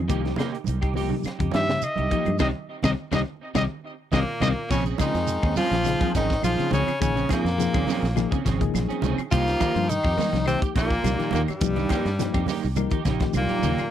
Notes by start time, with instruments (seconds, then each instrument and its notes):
0.08 fingered electric bass C2, clean electric guitar D#3 A#3 D#4 G4, reed electric piano F3 A#3 D#4 G4, kick, closed hi-hat, shekere
0.24 clean electric guitar D#4 G4, snare, closed hi-hat
0.36 clean electric guitar C3 A#3 D#4 G4, snare, closed hi-hat, high conga, low conga, claves, shekere
0.55 closed hi-hat
0.64 fingered electric bass C2, closed hi-hat, high conga, shekere
0.81 reed electric piano D#4 G4, clean electric guitar D#4 G4, kick, closed hi-hat, claves
0.94 reed electric piano F3 A#3 D#4 G4, clean electric guitar D#4 G4, muted clean electric guitar stroke, open hi-hat, low conga, shekere
1.09 clean electric guitar C3, high conga
1.24 muted fingered electric bass stroke, snare, closed hi-hat, claves, shekere
1.39 fingered electric bass F2, clean electric guitar C#3 D#4 G4, kick, closed hi-hat
1.51 fingered electric bass G2, clean electric guitar D#3 D#4 G4, reed electric piano F3 A#3 D#4 G4, trumpet E5, snare, closed hi-hat, high conga, shekere
1.68 clean electric guitar C#3, snare
1.82 trumpet D#5, closed hi-hat, claves, shekere
1.96 fingered electric bass C2, clean electric guitar D#4 G4, closed hi-hat, high conga
2.09 clean electric guitar F3 A#3 D#4 G4, reed electric piano F3 A#3 D#4 G4, kick, closed hi-hat, low conga, shekere
2.25 fingered electric bass G2, clean electric guitar F3, closed hi-hat, high conga, claves
2.39 fingered electric bass C2, clean electric guitar C3 D#3 G3 C4 D#4 G4, reed electric piano C4 D#4 G4, trumpet D#5, kick, snare, low conga, claves, shekere
2.83 fingered electric bass C2, clean electric guitar C3 D#3 G3 C4 D#4 G4, reed electric piano C4 D#4 G4, trumpet D#5, kick, snare, low conga, claves, shekere
3.11 fingered electric bass C2, clean electric guitar C3 D#3 G3 C4 D#4 G4, reed electric piano C4 D#4 G4, trumpet D#5, kick, snare, low conga, claves, shekere
3.55 fingered electric bass C2, clean electric guitar C3 D#3 G3 C4 D#4 G4, reed electric piano C4 D#4 G4, trumpet D#5, kick, snare, low conga, claves, shekere
4.12 fingered electric bass C2, baritone saxophone A#2, trombone A#2, clean electric guitar C3 D#3 G3 C4 D#4 G4, tenor saxophone A#3, reed electric piano C4 D#4 G4, trumpet D#5, kick, snare, low conga, claves, shekere
4.40 fingered electric bass C2, clean electric guitar C3 D#3 G3 C4 D#4 G4, reed electric piano C4 D#4 G4, trumpet D#5, kick, snare, low conga, claves, shekere
4.70 fingered electric bass A#1, clean electric guitar C3 F3 C4 C#4 G#4, baritone saxophone C#3, trombone C#3, tenor saxophone C#4, kick, crash, shekere
4.85 clean electric guitar C4 C#4 G#4, closed hi-hat, shekere
4.98 clean electric guitar C#3 F3 C4 C#4 G#4, baritone saxophone D#3, trombone G#3, tenor saxophone D#4, kick, closed hi-hat, high conga, claves, shekere
5.14 fingered electric bass F2, clean electric guitar F3, snare, closed hi-hat, shekere
5.27 closed hi-hat, shekere
5.43 fingered electric bass D#2, clean electric guitar C4 C#4 G#4, kick, claves, shekere
5.56 clean electric guitar F3 G3 C4 C#4 G#4, trombone F3, baritone saxophone F3, tenor saxophone F4, open hi-hat, high conga, low conga, shekere
5.71 fingered electric bass A#1, clean electric guitar F3, snare, closed hi-hat, shekere
5.84 clean electric guitar C#3, reed electric piano F3 A#3 D#4 G#4, snare, closed hi-hat, claves, shekere
5.99 clean electric guitar F3 C4 G#4, kick, closed hi-hat, high conga, shekere
6.14 fingered electric bass G#1, baritone saxophone D#3, trombone D#3, clean electric guitar F3 C4 C#4 G#4, tenor saxophone D#4, kick, snare, closed hi-hat, shekere
6.30 kick, snare, shekere
6.43 fingered electric bass A#1, reed electric piano F3 A#3 D#4 G#4, trombone F3, baritone saxophone F3, tenor saxophone F4, closed hi-hat, high conga, claves, shekere
6.58 clean electric guitar C#3 C4 C#4 G#4, muted fingered electric bass stroke, closed hi-hat, shekere
6.71 fingered electric bass C#2, trombone C#3, clean electric guitar C#3 F3 C4 C#4 G#4, baritone saxophone C#3, tenor saxophone C#4, closed hi-hat, high conga, low conga, shekere
6.88 muted fingered electric bass stroke, closed hi-hat, claves, shekere
6.99 fingered electric bass A#1, trombone C#3, baritone saxophone C#3, clean electric guitar D#3, reed electric piano F3 A#3 D#4 G#4, tenor saxophone C#4, kick, closed hi-hat, shekere
7.16 clean electric guitar C#3 C4 C#4 G#4, closed hi-hat, shekere
7.28 trombone A#2, baritone saxophone A#2, clean electric guitar F3 C4 G#4, reed electric piano F3 A#3 D#4 G#4, kick, snare, closed hi-hat, high conga, claves
7.32 tenor saxophone A#3, shekere
7.45 fingered electric bass F2, snare, closed hi-hat, shekere
7.58 clean electric guitar F3, reed electric piano F3 A#3 D#4 G#4, snare, closed hi-hat, shekere
7.73 fingered electric bass D#2, clean electric guitar C4 C#4 G#4, kick, closed hi-hat, high conga, claves, shekere
7.87 clean electric guitar F3 C4 C#4 G#4, snare, open hi-hat, high conga, low conga, shekere
8.03 fingered electric bass A#1, snare, shekere
8.16 clean electric guitar F3, reed electric piano F3 A#3 D#4 G#4, snare, closed hi-hat, low conga, claves, shekere
8.31 clean electric guitar C#3 C4 C#4 G#4, kick, closed hi-hat, shekere
8.45 fingered electric bass G#1, clean electric guitar C3 F3 C4 C#4 G#4, kick, snare, closed hi-hat, shekere
8.60 clean electric guitar C#3, reed electric piano F3 A#3 D#4 G#4, kick, closed hi-hat, shekere
8.74 fingered electric bass A#1, snare, closed hi-hat, high conga, claves, shekere
8.88 clean electric guitar C4 C#4 G#4, muted fingered electric bass stroke, closed hi-hat, shekere
9.02 fingered electric bass C#2, clean electric guitar C3 F3 C4 C#4 G#4, closed hi-hat, high conga, low conga, shekere
9.18 closed hi-hat, claves, shekere
9.31 fingered electric bass C2, clean electric guitar C3 A#3 D#4 G4, baritone saxophone F3, trombone A#3, tenor saxophone F4, kick, closed hi-hat, shekere
9.47 clean electric guitar D#4 G4, snare, closed hi-hat, shekere
9.60 clean electric guitar D#3 A#3 G4, muted clean electric guitar stroke, kick, closed hi-hat, high conga, claves, shekere
9.75 fingered electric bass G2, clean electric guitar F3, closed hi-hat, shekere
9.89 baritone saxophone D#3, trombone D#3, tenor saxophone D#4, closed hi-hat, shekere
10.03 fingered electric bass F2, clean electric guitar D#4 G4, kick, claves, shekere
10.17 clean electric guitar G3 A#3 D#4, muted clean electric guitar stroke, snare, open hi-hat, high conga, low conga, shekere
10.33 fingered electric bass C2, clean electric guitar F3, snare, closed hi-hat, shekere
10.46 baritone saxophone C3, trombone C3, clean electric guitar D#3, reed electric piano F3 A#3 D#4 G4, tenor saxophone C4, closed hi-hat, claves, shekere
10.61 clean electric guitar G4, kick, closed hi-hat, shekere
10.75 fingered electric bass A#1, trombone A#2, baritone saxophone A#2, clean electric guitar A#3 D#4 G4, tenor saxophone A#3, kick, snare, closed hi-hat, shekere
10.90 kick, shekere
11.03 fingered electric bass C2, reed electric piano F3 A#3 D#4 G4, snare, closed hi-hat, high conga, claves, shekere
11.18 clean electric guitar D#3 D#4 G4, muted fingered electric bass stroke, closed hi-hat, shekere
11.31 fingered electric bass D#2, baritone saxophone A#2, clean electric guitar D#3 A#3 D#4 G4, tenor saxophone A#3, closed hi-hat, high conga, low conga
11.35 trombone A#2, shekere
11.48 baritone saxophone G2, trombone G2, tenor saxophone G3, muted fingered electric bass stroke, closed hi-hat, claves, shekere
11.61 fingered electric bass C2, reed electric piano F3 A#3 D#4 G4, clean electric guitar F3, kick, closed hi-hat, shekere
11.76 clean electric guitar D#3 D#4 G4, closed hi-hat, high conga, shekere
11.89 reed electric piano F3 A#3 D#4 G4, clean electric guitar A#3 D#4 G4, kick, snare, closed hi-hat, high conga, claves, shekere
12.05 fingered electric bass G2, snare, closed hi-hat, shekere
12.19 reed electric piano F3 A#3 D#4 G4, clean electric guitar G3, snare, closed hi-hat, shekere
12.34 fingered electric bass F2, clean electric guitar D#4 G4, kick, closed hi-hat, claves, shekere
12.46 clean electric guitar A#3 D#4 G4, snare, open hi-hat, high conga, low conga, shekere
12.63 fingered electric bass C2, shekere
12.76 reed electric piano F3 A#3 D#4 A#4, clean electric guitar G3, closed hi-hat, low conga, claves, shekere
12.91 clean electric guitar D#3 D#4 G4, kick, closed hi-hat, shekere
13.05 fingered electric bass A#1, clean electric guitar C#3 A#3 D#4 G4, kick, snare, closed hi-hat, low conga, shekere
13.20 clean electric guitar D#3, reed electric piano F3 A#3 D#4 G4, kick, snare, closed hi-hat, shekere
13.33 fingered electric bass C2, baritone saxophone A#2, closed hi-hat, high conga, claves, shekere
13.37 trombone A#2, tenor saxophone A#3
13.49 clean electric guitar D#4 G4, closed hi-hat, high conga, shekere
13.59 clean electric guitar C#3 A#3, high conga
13.63 fingered electric bass D#2, clean electric guitar D#4 G4, closed hi-hat, shekere
13.68 low conga
13.78 muted fingered electric bass stroke, closed hi-hat, low conga, claves, shekere